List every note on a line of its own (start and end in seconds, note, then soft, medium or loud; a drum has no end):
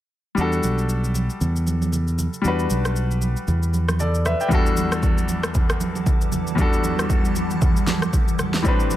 0.35 0.59 E2 loud
0.35 2.39 G3 medium
0.35 2.40 D4 medium
0.35 2.41 F#4 medium
0.35 shaker medium
0.41 2.42 A4 medium
0.52 shaker soft
0.63 1.27 B1 medium
0.63 high conga medium
0.63 shaker medium
0.78 shaker medium
0.89 shaker medium
1.04 high conga soft
1.04 shaker medium
1.15 high conga medium
1.15 shaker medium
1.30 shaker soft
1.41 2.26 E2 loud
1.41 low conga medium
1.41 shaker medium
1.56 shaker medium
1.67 high conga medium
1.67 shaker medium
1.82 high conga medium
1.82 shaker soft
1.93 low conga medium
1.93 shaker medium
2.08 shaker medium
2.18 high conga medium
2.18 low conga medium
2.18 shaker loud
2.33 shaker medium
2.42 2.66 E2 loud
2.42 4.46 G3 medium
2.42 4.47 D4 medium
2.42 shaker medium
2.46 4.48 F#4 medium
2.46 3.98 B4 medium
2.59 shaker soft
2.70 3.34 B1 medium
2.70 high conga medium
2.70 shaker loud
2.85 cross-stick medium
2.85 shaker medium
2.96 shaker medium
3.11 high conga soft
3.11 shaker medium
3.21 high conga medium
3.21 shaker medium
3.37 shaker medium
3.48 4.33 E2 loud
3.48 low conga medium
3.48 shaker medium
3.63 shaker medium
3.73 high conga medium
3.73 shaker medium
3.88 cross-stick medium
3.88 high conga medium
3.88 shaker soft
3.99 4.25 A4 medium
3.99 4.24 D5 medium
3.99 low conga medium
3.99 shaker medium
4.14 shaker medium
4.25 4.40 B4 medium
4.25 4.40 E5 medium
4.25 cross-stick medium
4.25 high conga medium
4.25 low conga medium
4.25 shaker medium
4.40 4.65 D5 medium
4.40 4.65 G5 medium
4.40 shaker medium
4.48 6.53 E2 medium
4.48 8.61 E3 medium
4.48 6.54 G3 medium
4.48 8.61 G3 medium
4.48 6.54 D4 medium
4.48 8.61 F#5 medium
4.48 8.61 A5 medium
4.48 8.96 D6 medium
4.48 kick loud
4.48 shaker medium
4.53 6.55 F#4 medium
4.53 6.56 A4 medium
4.66 shaker medium
4.77 high conga medium
4.77 shaker loud
4.92 cross-stick medium
4.92 shaker medium
5.03 kick medium
5.03 shaker medium
5.18 high conga soft
5.18 shaker medium
5.28 high conga medium
5.28 shaker medium
5.43 cross-stick loud
5.43 shaker medium
5.54 kick medium
5.54 low conga medium
5.54 shaker medium
5.70 cross-stick loud
5.70 shaker medium
5.80 high conga medium
5.80 shaker medium
5.95 high conga medium
5.95 shaker soft
6.06 kick medium
6.06 low conga medium
6.06 shaker medium
6.21 shaker medium
6.32 high conga medium
6.32 low conga medium
6.32 shaker loud
6.47 shaker medium
6.55 8.60 E2 medium
6.55 8.60 G3 medium
6.55 8.61 D4 medium
6.55 kick loud
6.55 shaker medium
6.60 8.62 F#4 medium
6.60 8.63 A4 medium
6.73 shaker medium
6.84 high conga medium
6.84 shaker loud
6.99 cross-stick medium
6.99 shaker medium
7.10 kick medium
7.10 shaker medium
7.25 high conga soft
7.25 shaker medium
7.35 high conga medium
7.35 shaker medium
7.50 shaker medium
7.61 kick loud
7.61 low conga medium
7.61 shaker medium
7.76 shaker medium
7.87 snare medium
7.87 high conga medium
7.87 shaker medium
8.02 cross-stick medium
8.02 high conga medium
8.02 shaker soft
8.13 kick medium
8.13 low conga medium
8.13 shaker medium
8.28 shaker medium
8.39 cross-stick medium
8.39 high conga medium
8.39 low conga medium
8.39 shaker loud
8.54 snare medium
8.54 shaker medium
8.62 8.96 A2 medium
8.62 8.96 G3 medium
8.62 8.96 A3 medium
8.62 8.96 C4 medium
8.62 8.96 G5 medium
8.62 8.96 B5 medium
8.62 kick loud
8.62 shaker medium
8.67 8.96 D4 medium
8.67 8.96 B4 medium
8.80 shaker medium
8.91 high conga medium
8.91 shaker medium